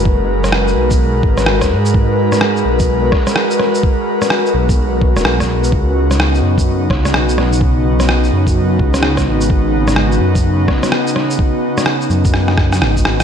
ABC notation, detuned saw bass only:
X:1
M:4/4
L:1/16
Q:"Swing 16ths" 1/4=127
K:C#dor
V:1 name="Detuned saw bass" clef=bass
F,,,6 B,,,4 G,,,4 G,,2- | G,,6 B,,,4 z6 | z6 B,,,4- B,,, D,,, B,,,4 | C,,6 F,,4 C,,2 B,,,4- |
B,,,6 F,,4 C,,4 G,,,2- | G,,,6 F,,4 z6 | z6 F,,6 G,,,2 G,,,2 |]